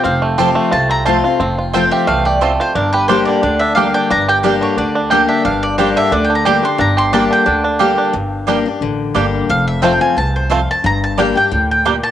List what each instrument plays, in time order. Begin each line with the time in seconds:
Already playing: five-string banjo F4 G4
0.04 upright bass F1, steel-string acoustic guitar F2, five-string banjo C4, mandolin F5
0.22 five-string banjo A3
0.38 steel-string acoustic guitar F3 A3 C4 F4, mandolin C4 F4 C5 A5, five-string banjo G4
0.55 five-string banjo A3
0.72 upright bass C2, steel-string acoustic guitar C3, five-string banjo F4, mandolin A5
0.90 five-string banjo C4, mandolin A#5
1.05 steel-string acoustic guitar F3 A3 C4 F4, five-string banjo A3, mandolin C4 F4 C5 A5
1.24 steel-string acoustic guitar C4 F4, five-string banjo F4
1.40 upright bass F1, steel-string acoustic guitar F2, five-string banjo C4
1.58 five-string banjo F4
1.73 steel-string acoustic guitar F3 A3 C4 F4, mandolin C4 F4 C5 G5 A5, five-string banjo C4
1.91 five-string banjo G4, mandolin E5
2.07 upright bass C2, steel-string acoustic guitar E2, five-string banjo A3, mandolin F5
2.25 five-string banjo G4, mandolin D5
2.41 steel-string acoustic guitar F2, five-string banjo A3, mandolin C4 F4 A4 C5 A5
2.60 five-string banjo F4, mandolin C5
2.75 upright bass G1, steel-string acoustic guitar G2, five-string banjo D4, mandolin A#4
2.93 five-string banjo G4, mandolin B4
3.08 steel-string acoustic guitar G3 A#3 D4 G4, mandolin A#3 G4 C5 D5 G5, five-string banjo D4
3.25 five-string banjo D3, mandolin D5
3.43 upright bass D2, steel-string acoustic guitar D3, five-string banjo D4, mandolin D5
3.59 five-string banjo D4, mandolin E5
3.75 steel-string acoustic guitar G3 A#3 D4 G4, mandolin A#3 G4 D5 F5 G5, five-string banjo G4
3.94 five-string banjo D4, mandolin G5
4.10 upright bass G1, steel-string acoustic guitar G2, five-string banjo D4, mandolin A#5
4.28 five-string banjo G4, mandolin G5
4.43 steel-string acoustic guitar G3 A#3 D4 G4, mandolin A#3 G4 D5 G5, five-string banjo D4
4.61 five-string banjo D3, mandolin C#5
4.77 upright bass D2, steel-string acoustic guitar D3, five-string banjo D4, mandolin D5
4.95 five-string banjo D4
5.10 steel-string acoustic guitar G3 A#3 D4 G4, mandolin A#3 G4 D5 G5, five-string banjo G4
5.29 five-string banjo D4, mandolin E5
5.45 upright bass G1, steel-string acoustic guitar G2, five-string banjo D4, mandolin F5
5.63 mandolin D5
5.78 steel-string acoustic guitar G3 A#3 D4 G4, mandolin A#3 G4 C5 D5 G5, five-string banjo D4
5.96 five-string banjo D3, mandolin E5
6.12 upright bass D2, steel-string acoustic guitar D3, five-string banjo D4, mandolin D5
6.24 mandolin G5
6.30 five-string banjo D4
6.35 mandolin A#5
6.45 steel-string acoustic guitar G3 A#3 D4 G4, mandolin A#3 G4 D5 G5 D6, five-string banjo G4
6.62 five-string banjo D4, steel-string acoustic guitar D4 G4, mandolin C6
6.78 upright bass G1, steel-string acoustic guitar G2, five-string banjo D4, mandolin A#5
6.97 five-string banjo G4, mandolin C6
7.13 steel-string acoustic guitar G3 A#3 D4 G4, mandolin A#3 G4 D5 G5 A5, five-string banjo D4
7.31 five-string banjo D3, mandolin G5
7.46 upright bass D2, steel-string acoustic guitar D3, five-string banjo D4
7.64 five-string banjo D4
7.79 steel-string acoustic guitar G3 A#3 D4 G4, mandolin A#3 G4 D5 G5, five-string banjo G4
7.98 five-string banjo D4
8.13 upright bass G1, steel-string acoustic guitar G2
8.47 steel-string acoustic guitar G3 A#3 D4 G4, five-string banjo G3 D4, mandolin A#3 G4 D5 G5
8.66 steel-string acoustic guitar D4 G4
8.81 upright bass A1, steel-string acoustic guitar D3
9.15 upright bass G1, steel-string acoustic guitar G3 A#3 D4 G4, five-string banjo G3 D4, mandolin A#3 G4 D5 G5
9.49 upright bass F1, steel-string acoustic guitar F2, mandolin F5
9.68 mandolin E5
9.82 steel-string acoustic guitar F3 A3 C4 F4, five-string banjo A3 C4 F4, mandolin C4 F4 C5 G5 A5
10.01 steel-string acoustic guitar C4 F4, mandolin G#5
10.17 upright bass C2, steel-string acoustic guitar E2, mandolin A5
10.36 mandolin C5
10.49 steel-string acoustic guitar F2, five-string banjo A3 C4 F4, mandolin C4 F4 C5 F5 A5
10.71 mandolin A5
10.84 upright bass G1, steel-string acoustic guitar G2, mandolin A#5
11.04 mandolin A5
11.18 steel-string acoustic guitar G3 A#3 D4 G4, five-string banjo G3 D4, mandolin A#3 G4 D5 G5
11.35 steel-string acoustic guitar D4 G4, mandolin G5
11.51 upright bass D2, steel-string acoustic guitar A2
11.71 mandolin G5
11.85 steel-string acoustic guitar A#2, five-string banjo G3 D4, mandolin A#3 G4 D5 G5
12.04 mandolin A5